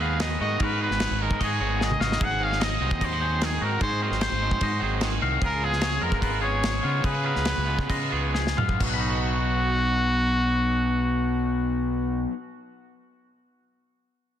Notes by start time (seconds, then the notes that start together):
Already playing: D#2 G#2 G#3 F#4
0.00 D#3 G#3 B3 D#4 G#4 B4 F5
0.20 D#3 D#5, snare, crash
0.40 G#2 D#3 G#3 B3 D#4 F#4 D#5
0.60 G#2 F#4 A#4 B4, kick, crash
0.81 D#3 G#3 B3 D#4 G#4 B4
0.90 G#1, snare
1.00 C#5, snare, crash
1.11 G#1
1.21 D#3 G#3 B3 D#4 A#4
1.31 G#2, kick
1.40 G#2 F#4 G#4 D#5, kick, crash
1.60 G#1 D#3 G#3 B3 D#4 F#4 C#5
1.80 D#3 G#4 D#5, snare
1.91 mid tom
2.00 G#1 D#3 G#3 B3 D#4 F#4 D#5 F5, snare
2.12 snare
2.21 G#1 G#2 D#4 G#4 F#5, kick, crash
2.31 F#4
2.40 D#3 F#3 C4 D#4 F#4 F5
2.51 G#4, snare
2.60 D#5, snare, crash
2.80 C2 D#3 F#3 G#3 C4 D#4 C5
2.91 D#2, kick
3.01 D#4 C5 D#5, kick, crash
3.13 F#4
3.20 D#3 F#3 C4 D#4 G#4 C5
3.41 D#3 G#4, snare, crash
3.61 G#2 D#3 F#3 C4 D#4 F#4 A#4
3.81 G#2 F#4 G#4 C5, kick, crash
4.01 D#3 F#3 C4 D#4 G#4 A#4 C5
4.11 G#1, snare
4.21 C5, snare, crash
4.31 G#1
4.42 D#3 F#3 G#3 C4 D#4
4.51 G#2, kick
4.61 G#2 F#4 D#5, kick, crash
4.80 G#1 D#3 F#3 C4 D#4 G#4 C5
5.01 D#3 G#4, snare, crash
5.22 C2 D#3 F#3 C4 D#4 F#4 F5
5.42 C#2 C#3 F4 G#4 A#4, kick, crash
5.61 C#3 G#3 B3 F4 G#4
5.73 snare
5.81 C#5, snare, crash
6.01 F2 C#3 G#3 B3 F4 A#4
6.12 G#1, kick
6.22 F4 B4, kick, crash
6.41 C#3 G#3 B3 F4 G#4 C#5
6.63 G#2, snare, crash
6.83 C#3 G#3 B3 F4
7.04 C#3 D#4 G#4 B4, kick, crash
7.14 F4
7.24 C#3 G#3 B3 F4 G#4 A#4
7.36 C#2, snare
7.45 C#5, snare, crash
7.58 C#2
7.67 C#3 G#3 B3 F4
7.79 C#3, kick
7.90 C#3 F4 D#5, kick, crash
8.11 C#2 C#3 G#3 B3 F4 G#4 C#5
8.34 G#2 G#4, snare
8.47 snare
8.57 F#2 C#3 G#3 B3 F4 F5, mid tom
8.69 kick
8.79 B1 B2 F#3 B3 F#4, kick, crash
8.83 D#4 D#5
8.89 F#3 F#5
8.94 B5
8.99 D#4
9.10 F#4